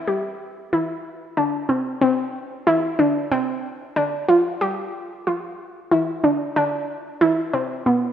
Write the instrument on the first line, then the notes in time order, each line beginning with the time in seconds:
synth pluck
0.08 G4
0.73 E4
1.37 D4
1.69 C4
2.01 C4
2.67 E4
2.99 D4
3.32 C4
3.96 D4
4.29 F4
4.61 G4
5.27 F4
5.92 E4
6.24 D4
6.56 D4
7.21 E4
7.54 C4
7.86 B3